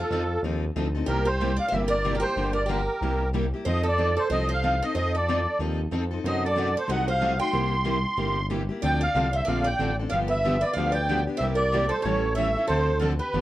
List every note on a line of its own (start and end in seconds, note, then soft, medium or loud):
0.00 0.40 F4 medium
0.00 0.41 A4 medium
0.10 0.38 F2 medium
0.10 0.22 F3 medium
0.10 0.22 C4 medium
0.10 0.22 D#4 medium
0.10 0.22 A4 medium
0.43 0.70 D#2 medium
0.43 0.64 F3 medium
0.43 0.63 C4 medium
0.43 0.64 D#4 medium
0.43 0.64 A4 medium
0.76 1.03 D2 medium
0.76 0.86 F3 medium
0.76 0.86 C4 medium
0.76 0.87 D#4 medium
0.76 0.87 A4 medium
0.94 1.08 C4 soft
0.94 1.07 D#4 medium
0.94 1.07 A4 medium
1.06 1.59 C2 medium
1.06 1.27 C3 medium
1.06 1.28 G3 medium
1.06 1.28 A#3 medium
1.06 1.28 E4 medium
1.06 1.24 G4 medium
1.06 1.28 G4 medium
1.06 1.27 A#4 medium
1.25 1.56 G4 medium
1.25 1.57 C5 medium
1.40 1.51 C3 medium
1.40 1.51 G3 medium
1.40 1.51 A#3 medium
1.40 1.51 E4 medium
1.40 1.51 G4 medium
1.56 1.68 D5 medium
1.56 1.73 F5 medium
1.68 2.24 G1 medium
1.68 1.92 C3 medium
1.68 1.92 G3 medium
1.68 1.92 A#3 medium
1.68 1.74 C5 medium
1.68 1.81 E5 medium
1.73 1.93 E4 medium
1.73 1.93 G4 medium
1.88 2.12 A#4 medium
1.88 2.15 D5 medium
2.04 2.15 C3 medium
2.04 2.15 G3 medium
2.04 2.16 A#3 medium
2.04 2.15 E4 medium
2.04 2.16 G4 medium
2.15 2.19 G4 medium
2.15 2.24 A#4 medium
2.20 2.52 G4 medium
2.20 2.36 G4 medium
2.20 2.53 C5 medium
2.24 2.36 A#3 soft
2.24 2.36 E4 medium
2.36 2.88 G1 medium
2.36 2.57 D3 medium
2.36 2.57 F3 medium
2.36 2.57 A#3 medium
2.36 2.57 D4 medium
2.36 2.57 G4 medium
2.53 2.66 A#4 medium
2.53 2.69 D5 medium
2.66 2.80 D3 medium
2.66 2.80 F3 medium
2.66 2.80 A#3 medium
2.66 2.80 D4 medium
2.66 3.28 G4 medium
2.66 2.80 G4 medium
2.66 3.30 A#4 medium
3.01 3.53 C2 medium
3.01 3.22 C3 medium
3.01 3.22 G3 medium
3.01 3.22 A#3 medium
3.01 3.22 E4 medium
3.01 3.22 G4 medium
3.34 3.44 C3 medium
3.34 3.45 G3 medium
3.34 3.45 A#3 medium
3.34 3.45 E4 medium
3.34 3.45 G4 medium
3.54 3.66 A#3 soft
3.54 3.66 E4 soft
3.54 3.66 G4 medium
3.65 4.18 F2 medium
3.65 3.86 F3 soft
3.65 3.86 C4 medium
3.65 3.87 D#4 medium
3.65 3.86 A4 medium
3.65 3.83 C5 medium
3.65 3.86 D#5 medium
3.83 4.14 A4 medium
3.88 4.20 D5 medium
3.98 4.09 F3 medium
3.98 4.09 C4 medium
3.98 4.09 D#4 medium
3.98 4.10 A4 medium
4.17 4.29 A4 medium
4.17 4.31 C5 medium
4.30 4.82 C2 medium
4.30 4.51 F3 medium
4.30 4.51 C4 medium
4.30 4.51 D#4 medium
4.30 4.52 A4 medium
4.30 4.47 C5 medium
4.30 4.51 D#5 medium
4.49 4.79 C5 medium
4.49 4.84 F5 medium
4.64 4.74 F3 medium
4.64 4.74 C4 medium
4.64 4.74 D#4 medium
4.64 4.75 A4 medium
4.82 4.95 C4 soft
4.82 4.95 D#4 medium
4.82 4.95 A4 medium
4.82 4.93 C5 medium
4.82 4.95 D#5 medium
4.95 5.47 F2 medium
4.95 5.15 F3 medium
4.95 5.16 C4 medium
4.95 5.16 D#4 medium
4.95 5.16 A4 medium
4.95 5.13 C5 medium
4.95 5.16 D#5 medium
5.15 5.57 A4 medium
5.15 5.58 D5 medium
5.28 5.39 F3 medium
5.28 5.39 C4 medium
5.28 5.39 D#4 medium
5.28 5.39 A4 medium
5.59 5.87 D#2 medium
5.59 5.80 F3 medium
5.59 5.80 C4 medium
5.59 5.80 D#4 medium
5.59 5.80 A4 medium
5.91 6.19 F2 medium
5.91 6.03 F3 medium
5.91 6.03 C4 medium
5.91 6.04 D#4 medium
5.91 6.04 A4 medium
6.11 6.25 C4 soft
6.11 6.24 D#4 soft
6.11 6.24 A4 medium
6.24 6.76 F#2 medium
6.24 6.45 C3 medium
6.24 6.45 F#3 medium
6.24 6.45 A3 medium
6.24 6.45 C4 medium
6.24 6.45 D#4 medium
6.24 6.45 F#4 medium
6.24 6.45 A4 medium
6.24 6.43 C5 medium
6.24 6.44 D#5 medium
6.45 6.75 A4 medium
6.45 6.77 D5 medium
6.56 6.68 C3 medium
6.56 6.68 F#3 medium
6.56 6.68 A3 loud
6.56 6.67 C4 medium
6.56 6.68 D#4 medium
6.56 6.68 F#4 loud
6.56 6.67 A4 medium
6.77 6.89 A4 medium
6.77 6.91 C5 medium
6.88 7.40 C2 medium
6.88 7.09 C3 medium
6.88 7.09 F#3 medium
6.88 7.09 A3 medium
6.88 7.08 C4 medium
6.88 7.09 D#4 medium
6.88 7.10 F#4 medium
6.88 7.09 A4 medium
6.88 7.07 D#5 medium
6.88 7.08 F#5 medium
7.08 7.38 C5 medium
7.08 7.39 F5 medium
7.21 7.32 C3 medium
7.21 7.32 F#3 medium
7.21 7.33 A3 medium
7.21 7.32 C4 medium
7.21 7.32 D#4 medium
7.21 7.33 F#4 medium
7.21 7.32 A4 medium
7.40 7.53 A3 soft
7.40 7.53 D#4 medium
7.40 7.53 F#4 medium
7.40 8.46 G5 medium
7.40 8.47 C6 medium
7.52 8.05 C2 medium
7.52 7.73 C3 medium
7.52 7.73 G3 medium
7.52 7.73 A#3 medium
7.52 7.74 E4 medium
7.52 7.74 G4 medium
7.85 7.96 C3 medium
7.85 7.96 G3 medium
7.85 7.96 A#3 medium
7.85 7.96 E4 medium
7.85 7.97 G4 medium
8.17 8.69 G1 medium
8.17 8.37 C3 medium
8.17 8.38 G3 medium
8.17 8.38 A#3 medium
8.17 8.38 E4 medium
8.17 8.38 G4 medium
8.50 8.61 C3 medium
8.50 8.61 G3 medium
8.50 8.61 A#3 medium
8.50 8.61 E4 medium
8.50 8.61 G4 medium
8.69 8.83 A#3 soft
8.69 8.82 E4 soft
8.69 8.82 G4 medium
8.82 9.08 D2 medium
8.82 9.03 D3 medium
8.82 9.03 F3 medium
8.82 9.02 A3 medium
8.82 9.03 C4 medium
8.82 9.03 D4 medium
8.82 9.03 F4 medium
8.82 9.03 A4 medium
8.82 9.00 D5 medium
8.82 9.01 G5 loud
9.01 9.31 D5 medium
9.01 9.36 F5 medium
9.15 9.42 C2 medium
9.15 9.26 D3 medium
9.15 9.26 F3 medium
9.15 9.26 A3 medium
9.15 9.26 C4 medium
9.15 9.26 D4 medium
9.15 9.26 F4 medium
9.15 9.27 A4 medium
9.33 9.45 C5 medium
9.33 9.48 E5 medium
9.45 9.75 A#1 medium
9.45 9.67 D3 medium
9.45 9.68 F3 medium
9.45 9.67 A3 medium
9.45 9.68 C4 medium
9.45 9.68 D4 medium
9.45 9.67 F4 medium
9.45 9.63 D5 medium
9.45 9.67 F5 medium
9.49 9.68 A4 medium
9.64 9.95 D5 medium
9.64 9.96 G5 medium
9.79 10.07 A1 medium
9.79 9.90 D3 medium
9.79 9.90 F3 medium
9.79 9.90 A3 medium
9.79 9.91 C4 medium
9.79 9.91 D4 medium
9.79 9.90 F4 medium
9.79 9.91 A4 medium
9.99 10.12 C4 soft
9.99 10.12 D4 soft
9.99 10.11 A4 medium
10.09 10.63 G1 medium
10.09 10.32 D3 medium
10.09 10.32 F3 medium
10.09 10.15 D5 medium
10.09 10.19 F5 medium
10.14 10.33 B3 medium
10.14 10.33 D4 medium
10.14 10.33 G4 medium
10.28 10.59 B4 medium
10.28 10.64 E5 medium
10.44 10.55 D3 medium
10.44 10.55 F3 medium
10.44 10.55 B3 medium
10.44 10.55 D4 medium
10.44 10.55 G4 medium
10.61 10.73 B4 medium
10.61 10.74 D5 medium
10.73 11.27 D2 medium
10.73 10.91 D5 medium
10.73 10.92 F5 medium
10.77 10.96 D3 medium
10.77 10.97 F3 medium
10.77 10.97 B3 medium
10.77 10.97 D4 medium
10.77 10.97 G4 medium
10.92 11.23 D5 medium
10.92 11.24 G5 medium
11.09 11.19 D3 medium
11.09 11.19 F3 medium
11.09 11.20 B3 medium
11.09 11.20 D4 medium
11.09 11.20 G4 medium
11.27 11.41 B3 soft
11.27 11.41 D4 medium
11.27 11.40 G4 medium
11.37 11.91 C2 medium
11.37 11.60 C3 medium
11.37 11.61 G3 medium
11.37 11.43 C5 medium
11.37 11.47 E5 medium
11.41 11.61 A#3 medium
11.41 11.61 E4 medium
11.41 11.61 G4 medium
11.55 11.87 A#4 medium
11.55 11.91 D5 medium
11.72 11.83 C3 medium
11.72 11.83 G3 medium
11.72 11.84 A#3 medium
11.72 11.84 E4 medium
11.72 11.84 G4 medium
11.89 12.00 A4 medium
11.89 12.04 C5 medium
12.02 12.56 A1 medium
12.02 12.25 E3 medium
12.02 12.25 G3 medium
12.02 12.25 C#4 medium
12.02 12.25 E4 medium
12.02 12.33 A4 medium
12.02 12.33 C#5 medium
12.06 12.25 A4 medium
12.35 12.48 E3 medium
12.35 12.48 G3 medium
12.35 12.48 C#4 medium
12.35 12.48 E4 medium
12.35 12.48 A4 medium
12.35 12.66 C#5 medium
12.35 12.66 E5 medium
12.57 12.69 C#4 soft
12.57 12.69 E4 medium
12.57 12.68 A4 medium
12.67 13.21 D2 medium
12.67 12.89 D3 medium
12.67 12.89 F3 medium
12.67 12.89 C4 medium
12.67 12.89 D4 medium
12.67 12.98 A4 medium
12.67 12.89 A4 medium
12.67 12.98 C5 medium
12.99 13.12 D3 medium
12.99 13.12 F3 medium
12.99 13.12 C4 medium
12.99 13.12 D4 medium
12.99 13.05 F4 medium
12.99 13.10 A4 medium
12.99 13.13 A4 medium
13.19 13.41 G4 medium
13.19 13.41 B4 medium
13.34 13.41 G1 medium
13.34 13.41 D3 medium
13.34 13.41 F3 medium
13.34 13.41 B3 medium
13.34 13.41 D4 medium
13.34 13.41 G4 medium